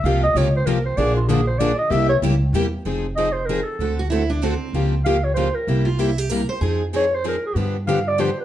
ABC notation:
X:1
M:3/4
L:1/16
Q:"Swing" 1/4=192
K:Fm
V:1 name="Clarinet"
f2 e2 d2 c2 B2 c2 | =d2 F2 A2 c2 d2 e2 | =e2 d2 z8 | z4 e2 c2 B2 =A2- |
=A2 z8 z2 | z4 f2 d2 c2 B2- | B2 z8 z2 | z4 d2 c2 B2 A2 |
z4 f2 =d2 c2 =B2 |]
V:2 name="Steel-string acoustic guitar"
z12 | z12 | z12 | z12 |
z2 ^F2 =E2 =D2 C4- | C3 z8 z | z2 F2 =E2 G2 B2 c2 | A3 z8 z |
z12 |]
V:3 name="Steel-string acoustic guitar"
[C,F,B,FG]2 z2 [C,F,B,FG]2 z2 [C,F,B,FG]2 z2 | [=D,F,B,=DA]2 z2 [D,F,B,DA]2 z2 [D,F,B,DA]2 z2 | [C,G,B,=EG]2 z2 [C,G,B,EG]2 z2 [C,G,B,EG]2 z2 | [F,CEA]2 z2 [F,CEA]2 z2 [F,CEA]2 z2 |
[=D,=A,C^F=A]2 z2 [D,A,CFA]2 z2 [D,A,CFA]2 z2 | [D,F,B,FG]2 z2 [D,F,B,FG]2 z2 [D,F,B,FG]2 z2 | [C,G,B,=EG]2 z2 [C,G,B,EG]2 z2 [C,G,B,EG]2 z2 | [F,CEA]2 z2 [F,CEA]2 z2 [F,CEA]2 z2 |
[=D,F,=B,=DG]2 z2 [D,F,B,DG]2 z2 [D,F,B,DG]2 z2 |]
V:4 name="Steel-string acoustic guitar"
[C,F,B,FG]2 z2 [C,F,B,FG]2 z2 [C,F,B,FG]2 z2 | [=D,F,B,=DA]2 z2 [D,F,B,DA]2 z2 [D,F,B,DA]2 z2 | [C,G,B,=EG]2 z2 [C,G,B,EG]2 z2 [C,G,B,EG]2 z2 | [F,CEA]2 z2 [F,CEA]2 z2 [F,CEA]2 z2 |
[=D,=A,C^F=A]2 z2 [D,A,CFA]2 z2 [D,A,CFA]2 z2 | [D,F,B,FG]2 z2 [D,F,B,FG]2 z2 [D,F,B,FG]2 z2 | [C,G,B,=EG]2 z2 [C,G,B,EG]2 z2 [C,G,B,EG]2 z2 | [F,CEA]2 z2 [F,CEA]2 z2 [F,CEA]2 z2 |
[=D,F,=B,=DG]2 z2 [D,F,B,DG]2 z2 [D,F,B,DG]2 z2 |]
V:5 name="Upright bass" clef=bass
C,,4 D,,4 C,,4 | B,,,12 | C,,4 D,,4 =E,,4 | F,,,12 |
=D,,12 | D,,12 | C,,12 | F,,12 |
G,,12 |]